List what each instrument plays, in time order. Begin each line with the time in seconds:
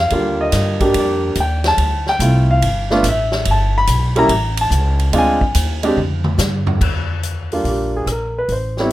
0.00 grand piano F5
0.10 upright bass D#2, grand piano D3 G3 A#3 F4, ride
0.41 grand piano D#5
0.52 upright bass G2, snare, hi-hat pedal, ride
0.80 grand piano G3 A#3 D4 G4, kick, ride
0.94 upright bass F2, ride
0.99 grand piano D5
1.35 upright bass D#2, hi-hat pedal, ride
1.40 grand piano G5
1.64 grand piano A5, snare, ride
1.77 upright bass D2, ride
2.07 grand piano G5, snare
2.19 upright bass C2, grand piano A3 C4 E4 F4, hi-hat pedal, ride
2.51 grand piano F5
2.62 upright bass G1, ride
2.90 grand piano A3 B3 D4 F4, snare
3.03 upright bass A1, hi-hat pedal, ride
3.09 grand piano E5
3.32 snare
3.45 upright bass G1, ride
3.51 grand piano A5
3.78 grand piano B5
3.87 upright bass B1, hi-hat pedal, ride
4.16 grand piano G3 A#3 C#4 E4 A#5, ride
4.29 upright bass A1, ride
4.57 grand piano A5, ride
4.70 upright bass C#2, hi-hat pedal
4.99 ride
5.12 upright bass D2, grand piano G#3 C4 D4 F4, ride
5.18 grand piano G#5
5.41 kick
5.55 upright bass D#2, hi-hat pedal, ride
5.83 grand piano G#3 C4 D4 G4, ride
5.97 upright bass F2, mid tom
6.24 mid tom
6.38 upright bass G2, snare, hi-hat pedal
6.67 floor tom
6.81 upright bass D#2, kick, crash
7.23 closed hi-hat
7.52 grand piano G3 A#3 D4 F4, open hi-hat
7.64 upright bass A#1, grand piano G4, open hi-hat
7.96 grand piano G#4
8.06 upright bass A#1, cross-stick, closed hi-hat
8.12 grand piano A#4
8.38 grand piano B4
8.48 upright bass A1, grand piano C5, open hi-hat
8.77 grand piano G3 B3 C4 E4 C#5, snare